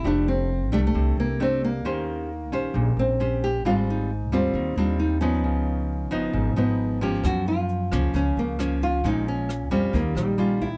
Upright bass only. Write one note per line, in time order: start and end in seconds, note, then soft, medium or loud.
0.05 0.72 F1 medium
0.72 0.93 C2 medium
0.95 1.15 C2 medium
1.18 1.85 C2 medium
1.85 2.52 D#2 medium
2.52 2.73 A#1 medium
2.74 2.95 A#1 medium
2.97 3.64 A#1 medium
3.64 4.32 G#1 medium
4.32 4.52 D#2 medium
4.54 4.75 D#2 medium
4.76 5.44 D#2 medium
5.44 6.11 C#2 medium
6.11 6.32 G#1 medium
6.33 6.55 G#1 medium
6.56 7.25 G#1 medium
7.24 7.93 F#2 medium
7.92 8.12 C#2 medium
8.14 8.35 C#2 medium
8.37 9.04 C#2 medium
9.04 9.71 A#1 medium
9.71 9.92 F2 medium
9.94 10.14 D#2 medium
10.15 10.77 A#1 medium